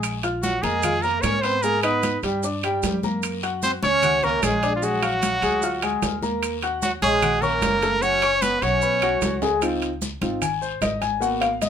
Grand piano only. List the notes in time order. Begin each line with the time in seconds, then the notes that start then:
Already playing: G#3 G#4 G#5
0.23 F4 F5 F6
0.64 A#3 A#4 A#5
0.84 F4 F5 F6
1.04 A#3 A#4 A#5
1.44 B3 B4 B5
1.64 G#3 G#4 G#5
1.84 D#4 D#5 D#6
2.24 G3 G4 G5
2.44 D4 D5 D6
2.64 G3 G4 G5
3.04 A#3 A#4 A#5
3.43 F#4 F#5 F#6
3.83 C#4 C#5 C#6
4.04 F#4 F#5 F#6
4.23 C#4 C#5 C#6
4.63 D4 D5 D6
4.82 G#3 G#4 G#5
5.02 F#4 F5 F6
5.43 G#3 G#4 G#5
5.63 F4 F5 F6
5.83 G#3 G#4 G#5
6.22 A#3 A#4 A#5
6.63 F#4 F#5 F#6
7.03 C#4 C#5 C#6
7.23 F#4 F#5 F#6
7.43 C#4 C#5 C#6
7.83 A3 A4 A5
8.02 F#3 F#4 F#5
8.22 C#4 C#5 C#6
8.62 F#3 F#4 F#5
8.82 B3 B4 B5
9.02 F#3 F#4 F#5
9.42 G#3 G#4 G#5
9.62 C4 D#4 F4
10.21 C4 D#4 F4
10.42 G#5
10.62 C5
10.82 D#5
11.01 G#5
11.20 A#3 B3 F#4 F#5
11.41 F5
11.62 D#5